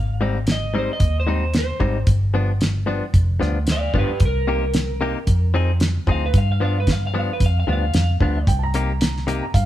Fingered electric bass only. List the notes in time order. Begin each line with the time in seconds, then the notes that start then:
Already playing: G#1
1.00 D#2
1.80 G#1
2.07 G1
3.14 F1
3.41 D2
3.93 G1
4.20 C2
5.27 F2
6.07 D2
6.34 G2
7.40 F2
7.67 D2
7.94 F2
8.21 D2
8.47 C2
9.54 G2